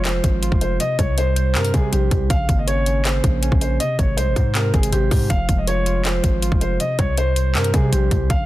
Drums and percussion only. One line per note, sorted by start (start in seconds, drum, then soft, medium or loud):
0.05 clap loud
0.05 closed hi-hat medium
0.24 kick medium
0.24 closed hi-hat medium
0.43 closed hi-hat medium
0.52 kick loud
0.61 closed hi-hat medium
0.80 closed hi-hat medium
0.99 kick loud
0.99 closed hi-hat medium
1.18 closed hi-hat medium
1.36 closed hi-hat medium
1.55 clap loud
1.55 closed hi-hat soft
1.65 closed hi-hat medium
1.74 kick medium
1.74 closed hi-hat medium
1.93 closed hi-hat medium
2.11 kick medium
2.11 closed hi-hat medium
2.30 kick loud
2.30 closed hi-hat medium
2.49 kick medium
2.49 closed hi-hat medium
2.68 closed hi-hat medium
2.86 closed hi-hat medium
3.05 clap loud
3.05 closed hi-hat medium
3.24 kick medium
3.24 closed hi-hat medium
3.43 closed hi-hat medium
3.52 kick loud
3.61 closed hi-hat medium
3.80 closed hi-hat medium
3.99 kick loud
3.99 closed hi-hat medium
4.18 closed hi-hat medium
4.36 kick medium
4.36 closed hi-hat medium
4.55 clap loud
4.55 closed hi-hat medium
4.74 kick medium
4.74 closed hi-hat medium
4.83 closed hi-hat medium
4.93 closed hi-hat medium
5.11 kick loud
5.11 open hi-hat medium
5.30 kick loud
5.30 closed hi-hat medium
5.49 kick medium
5.49 closed hi-hat medium
5.67 closed hi-hat medium
5.86 closed hi-hat medium
6.05 clap loud
6.05 closed hi-hat medium
6.24 kick medium
6.24 closed hi-hat medium
6.42 closed hi-hat medium
6.52 kick loud
6.61 closed hi-hat medium
6.80 closed hi-hat medium
6.99 kick loud
6.99 closed hi-hat medium
7.17 closed hi-hat medium
7.36 closed hi-hat medium
7.55 clap loud
7.55 closed hi-hat soft
7.64 closed hi-hat medium
7.74 kick loud
7.74 closed hi-hat medium
7.93 closed hi-hat medium
8.11 kick loud
8.11 closed hi-hat medium
8.30 kick loud
8.30 closed hi-hat medium